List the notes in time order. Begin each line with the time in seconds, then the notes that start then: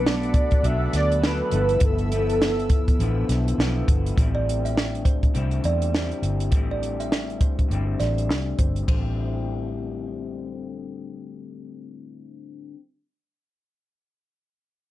Already playing: B1 B2 F#3 A3 B3 D4 A4 F#5 B5 D6
0.06 D5, snare
0.23 closed hi-hat
0.34 kick, closed hi-hat
0.51 kick, closed hi-hat
0.63 B1 B2 F#3 A3 D4 E5, closed hi-hat
0.93 D2 D5, snare, closed hi-hat
1.12 closed hi-hat
1.22 B2 F#3 A3 D4 B4, snare
1.49 G1 F3 B3 E4 E5 E6, closed hi-hat
1.54 G2 D3 A4
1.69 closed hi-hat
1.80 G1, kick, closed hi-hat
1.85 A4
1.98 closed hi-hat
2.12 F3 B3 E4, closed hi-hat
2.30 closed hi-hat
2.42 snare
2.59 closed hi-hat
2.69 kick, closed hi-hat
2.88 kick, closed hi-hat
3.00 A1 D3 F3 B3 E4, closed hi-hat
3.29 B1, snare, closed hi-hat
3.48 closed hi-hat
3.58 B1 D3 F3 B3 E4 A4, snare
3.62 E4
3.88 G1, kick, closed hi-hat
4.06 closed hi-hat
4.16 A1 A2 D3 G3, kick, closed hi-hat
4.21 C4 E4
4.35 D5
4.49 closed hi-hat
4.65 E5, closed hi-hat
4.77 snare
4.95 closed hi-hat
5.05 C5, kick, closed hi-hat
5.23 kick, closed hi-hat
5.34 C2 A2 D3 G3 C4 E4, closed hi-hat
5.51 closed hi-hat
5.64 E2 D5, closed hi-hat
5.82 closed hi-hat
5.92 D3 G3 C4 E4, snare
6.11 closed hi-hat
6.22 G1, closed hi-hat
6.40 closed hi-hat
6.51 A1 A2 D3 G3, kick, closed hi-hat
6.55 C4 E4
6.71 D5
6.83 closed hi-hat
7.00 E5, closed hi-hat
7.12 snare
7.30 closed hi-hat
7.41 C5, kick, closed hi-hat
7.59 kick, closed hi-hat
7.69 G1 A2 D3 G3, closed hi-hat
7.73 C4 E4
8.00 A1 D5, snare, closed hi-hat
8.18 closed hi-hat
8.29 C2, snare
8.59 G1 C5, kick, closed hi-hat
8.76 closed hi-hat
8.82 A2
8.88 A1 D3 C5, kick, ride
8.94 G3
8.98 C4
9.03 E4